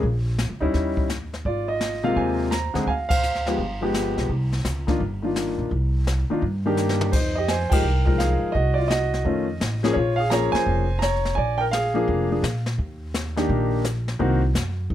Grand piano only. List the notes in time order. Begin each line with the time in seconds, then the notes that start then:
0.60 G3 C#4 D#4 E4
1.46 F4 D5
1.68 D#5
2.03 C3 G#3 A#3 F4 F5
2.17 C5 G#5
2.51 A#5
2.74 D3 G#3 C4 G#4
2.88 F5 G#5
3.09 C5 F5
3.47 F3 G#3 B3 G4
3.81 F3 G#3 B3 G4
4.87 D#3 A#3 D4 F4
5.22 D#3 A#3 D4 F4
6.30 D#3 A#3 D4 F4
6.66 D#3 A#3 D4 G4
7.12 D#4 C5
7.35 G4 D#5
7.48 C5 G#5
7.70 F3 G#3 D#4 G4 A#4 G5
8.05 F3 G#3 D#4 A#4
8.18 G#4 F5
8.52 F#4 D#5
8.74 F4 D5
8.88 F#4 D#5
9.24 D#3 A3 C#4 F4
9.83 F3 A#3 C#4 G#4
9.93 F4 C#5
10.16 G#4 F5
10.30 F3 A#3 C#4 G#4 C#5 A#5
10.52 C5 G#5
10.99 A#5
11.03 C#5
11.35 D5 G#5
11.58 A#4 G5
11.71 G#4 F5
11.94 F3 A#3 D4 G#4
12.30 F3 A#3 D4 G#4
13.36 D#3 A#3 D4 G4
14.19 D#3 A#3 C4 F#4